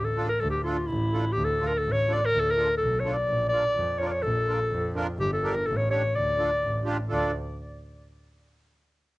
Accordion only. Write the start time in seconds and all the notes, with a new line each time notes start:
0.16 D4 F4 A4
0.65 D4 F4 A4
1.13 D4 F4 A4
1.61 D4 F4 A4
2.08 D4 F4 A4
2.56 D4 F4 A4
3.05 D4 F4 A4
3.52 D4 F4 A#4
4.01 D4 F4 A#4
4.48 D4 F4 A#4
4.95 D4 F4 A#4
5.43 D4 G4 A#4
5.90 D4 G4 C#5
6.38 D4 F4 A4
6.85 D4 F4 G4
7.09 D4 F4 A4